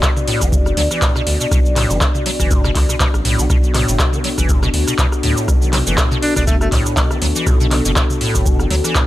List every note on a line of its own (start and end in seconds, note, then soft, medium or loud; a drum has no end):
0.00 0.10 B2 medium
0.00 9.07 B3 medium
0.00 9.07 D4 medium
0.00 9.07 F#4 medium
0.00 3.48 D5 medium
0.00 kick loud
0.00 cross-stick medium
0.00 clap loud
0.00 cabasa medium
0.17 mid tom medium
0.17 cabasa soft
0.27 0.43 A2 loud
0.27 open hi-hat loud
0.41 0.74 F#1 loud
0.41 0.54 E3 medium
0.41 kick medium
0.41 cross-stick soft
0.41 cabasa medium
0.52 0.57 B2 loud
0.52 kick loud
0.52 cabasa medium
0.66 cross-stick medium
0.66 cabasa soft
0.77 0.88 D2 loud
0.77 0.82 F#3 loud
0.77 open hi-hat loud
0.91 1.03 E3 medium
0.91 cross-stick soft
0.91 cabasa medium
1.02 1.13 A2 medium
1.02 kick loud
1.02 clap loud
1.02 cabasa medium
1.16 1.22 B2 loud
1.16 cross-stick medium
1.16 cabasa soft
1.27 1.38 D2 medium
1.27 open hi-hat loud
1.40 1.47 B2 medium
1.40 cabasa medium
1.51 1.86 B1 loud
1.51 1.59 B2 medium
1.51 kick loud
1.51 cross-stick medium
1.51 cabasa medium
1.66 cabasa soft
1.76 1.92 A2 loud
1.76 cross-stick soft
1.76 clap medium
1.76 open hi-hat loud
1.76 mid tom loud
1.90 1.99 F#1 medium
1.90 2.03 E3 medium
1.90 cabasa medium
2.01 2.06 B2 loud
2.01 kick loud
2.01 cross-stick medium
2.01 clap loud
2.01 cabasa medium
2.15 mid tom medium
2.15 cabasa soft
2.26 2.30 F#3 medium
2.26 open hi-hat loud
2.40 2.72 F#1 loud
2.40 2.52 E3 medium
2.40 kick medium
2.40 cross-stick soft
2.40 cabasa medium
2.51 2.62 A2 medium
2.51 kick loud
2.51 cabasa medium
2.64 2.70 B2 loud
2.64 cross-stick medium
2.64 cabasa soft
2.75 2.87 D2 loud
2.75 kick medium
2.75 clap medium
2.75 open hi-hat loud
2.89 2.95 B2 medium
2.89 cross-stick soft
2.89 cabasa medium
3.00 3.08 B2 medium
3.00 kick loud
3.00 clap loud
3.00 cabasa medium
3.14 3.23 A1 medium
3.14 cross-stick medium
3.14 cabasa soft
3.25 3.36 B1 loud
3.25 3.40 A2 loud
3.25 open hi-hat loud
3.39 3.48 B1 medium
3.39 3.45 E3 medium
3.39 cabasa medium
3.50 3.84 B1 loud
3.50 3.57 B2 medium
3.50 9.07 A4 medium
3.50 kick loud
3.50 cross-stick medium
3.50 cabasa medium
3.64 cabasa soft
3.74 4.01 A2 loud
3.74 cross-stick soft
3.74 clap medium
3.74 open hi-hat loud
3.74 mid tom loud
3.88 3.97 F#1 medium
3.88 cabasa medium
3.99 4.15 B2 loud
3.99 kick loud
3.99 cross-stick medium
3.99 clap loud
3.99 cabasa medium
4.13 4.19 E3 medium
4.13 mid tom medium
4.13 cabasa soft
4.24 4.29 F#3 loud
4.24 open hi-hat loud
4.38 4.71 F#1 loud
4.38 4.51 E3 medium
4.38 kick medium
4.38 cross-stick soft
4.38 cabasa medium
4.49 4.60 A2 medium
4.49 kick loud
4.49 cabasa medium
4.63 4.69 B2 loud
4.63 cross-stick medium
4.63 cabasa soft
4.74 4.85 D2 loud
4.74 open hi-hat loud
4.87 4.94 B2 medium
4.87 cross-stick soft
4.87 cabasa medium
4.99 5.06 B2 medium
4.99 kick loud
4.99 clap loud
4.99 cabasa medium
5.12 cross-stick medium
5.12 cabasa soft
5.23 5.35 D2 medium
5.23 5.50 A2 loud
5.23 open hi-hat loud
5.37 cabasa medium
5.48 5.83 B1 loud
5.48 5.64 B2 loud
5.48 kick loud
5.48 cross-stick medium
5.48 cabasa medium
5.62 5.68 E3 medium
5.62 cabasa soft
5.73 5.78 F#3 loud
5.73 cross-stick soft
5.73 clap medium
5.73 open hi-hat loud
5.73 mid tom loud
5.87 5.96 F#1 medium
5.87 5.99 E3 medium
5.87 cabasa medium
5.98 6.09 A2 medium
5.98 kick loud
5.98 cross-stick medium
5.98 clap loud
5.98 cabasa medium
6.11 6.18 B2 loud
6.11 mid tom medium
6.11 cabasa soft
6.22 6.31 D4 medium
6.22 open hi-hat loud
6.36 6.69 F#1 loud
6.36 6.42 B2 medium
6.36 6.43 D4 medium
6.36 kick medium
6.36 cross-stick soft
6.36 cabasa medium
6.47 6.55 B2 medium
6.47 6.56 A3 medium
6.47 kick loud
6.47 cabasa medium
6.61 6.68 A3 medium
6.61 cross-stick medium
6.61 cabasa soft
6.72 6.83 D2 loud
6.72 6.98 A2 loud
6.72 kick medium
6.72 clap medium
6.72 open hi-hat loud
6.86 cross-stick soft
6.86 cabasa medium
6.97 7.12 B2 loud
6.97 kick loud
6.97 clap loud
6.97 cabasa medium
7.11 7.17 E3 medium
7.11 cross-stick medium
7.11 cabasa soft
7.22 7.33 D2 medium
7.22 7.26 F#3 loud
7.22 open hi-hat loud
7.36 7.48 E3 medium
7.36 cabasa medium
7.47 7.81 B1 loud
7.47 7.58 A2 medium
7.47 kick loud
7.47 cross-stick medium
7.47 cabasa medium
7.60 7.66 B2 loud
7.60 cabasa soft
7.71 cross-stick soft
7.71 clap medium
7.71 open hi-hat loud
7.71 mid tom loud
7.85 7.94 F#1 medium
7.85 7.91 B2 medium
7.85 cabasa medium
7.96 8.04 B2 medium
7.96 kick loud
7.96 cross-stick medium
7.96 clap loud
7.96 cabasa medium
8.10 mid tom medium
8.10 cabasa soft
8.21 8.47 A2 loud
8.21 open hi-hat medium
8.35 8.67 F#1 loud
8.35 kick medium
8.35 cross-stick soft
8.35 cabasa medium
8.46 8.61 B2 loud
8.46 kick loud
8.46 cabasa medium
8.59 8.66 E3 medium
8.59 cross-stick medium
8.59 cabasa soft
8.70 8.82 D2 loud
8.70 8.75 F#3 loud
8.70 open hi-hat loud
8.84 8.97 E3 medium
8.84 cross-stick soft
8.84 cabasa medium
8.95 9.07 A2 medium
8.95 kick loud
8.95 clap loud
8.95 cabasa medium